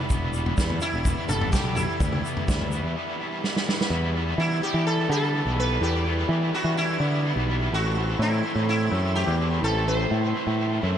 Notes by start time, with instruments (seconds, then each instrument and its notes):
Already playing: overdriven electric guitar G3 B3 E4, tonewheel organ G4 E5 B5
0.09 picked electric bass E1, overdriven electric guitar E3 G3 B3 E4, kick, floor tom, shaker
0.33 overdriven electric guitar G3 B3 E4, shaker
0.46 floor tom
0.57 picked electric bass E2, overdriven electric guitar E3 G3 B3 E4, kick, snare, shaker
0.70 floor tom
0.81 overdriven electric guitar E3 G3 B3 E4, sitar E4, shaker
0.94 picked electric bass E1
1.05 overdriven electric guitar E3 G3 B3 E4, kick, floor tom, shaker
1.28 picked electric bass G1, overdriven electric guitar E3 G3 B3 E4, sitar A4, mid tom, shaker
1.41 floor tom
1.52 overdriven electric guitar E3 G3 B3 E4, sitar G4, kick, snare, mid tom, shaker
1.64 picked electric bass B1
1.75 overdriven electric guitar B3 E4, sitar E4, floor tom, shaker
1.80 overdriven electric guitar G3
1.99 picked electric bass D2, overdriven electric guitar E3 G3 B3 E4, kick, floor tom, shaker
2.13 mid tom
2.23 overdriven electric guitar G3 B3 E4, shaker
2.37 floor tom
2.46 picked electric bass D2, overdriven electric guitar E3 G3 B3 E4, kick, snare, shaker
2.61 floor tom
2.70 overdriven electric guitar E3 G3 B3 E4, shaker
2.83 picked electric bass E2
2.94 overdriven electric guitar E3 G3 B3 E4
3.18 overdriven electric guitar E3 G3 B3 E4
3.42 overdriven electric guitar E3 G3 B3 E4, snare
3.56 snare
3.65 overdriven electric guitar G3 B3 E4, snare
3.81 snare
3.89 picked electric bass E2, overdriven electric guitar E3 G3 B3 E4, tonewheel organ G4 E5 B5
4.14 overdriven electric guitar E3 G3 B3 E4
4.38 picked electric bass E3, sitar E4
4.61 overdriven electric guitar G3 B3 E4, sitar G4
4.74 picked electric bass E3
4.87 sitar A4
5.09 picked electric bass D3, overdriven electric guitar G3 B3 E4, sitar A4
5.33 overdriven electric guitar E3 G3 B3 E4
5.45 picked electric bass B1
5.57 overdriven electric guitar G3 B3 E4, sitar B4
5.80 picked electric bass E2, overdriven electric guitar E3 G3 B3 E4, sitar G4
6.04 overdriven electric guitar E3 G3 B3 E4
6.29 picked electric bass E3
6.52 overdriven electric guitar G3 B3 E4, sitar F#4
6.64 picked electric bass E3
6.77 sitar E4
6.99 picked electric bass D3, overdriven electric guitar G3 B3 E4
7.23 overdriven electric guitar E3 G3 B3 E4
7.36 picked electric bass B1
7.48 overdriven electric guitar G3 B3 E4
7.72 picked electric bass A1, overdriven electric guitar A2 E3 A3 C4 E4, sitar F#4, tonewheel organ A4 C6
7.95 overdriven electric guitar A2 E3 A3 C4 E4
8.19 picked electric bass A2, sitar E4
8.43 overdriven electric guitar A3 C4 E4
8.56 picked electric bass A2
8.69 sitar E4
8.91 picked electric bass F#2, overdriven electric guitar A3 C4 E4
9.14 overdriven electric guitar E3 A3 C4 E4, sitar G4
9.27 picked electric bass E2
9.38 overdriven electric guitar A3 C4 E4
9.61 picked electric bass A1, overdriven electric guitar A2 E3 A3 C4 E4, sitar A4
9.85 overdriven electric guitar A2 E3 A3 C4 E4, sitar C5
10.11 picked electric bass A2
10.33 overdriven electric guitar A3 C4 E4
10.47 picked electric bass A2
10.81 picked electric bass F#2, overdriven electric guitar A3 C4 E4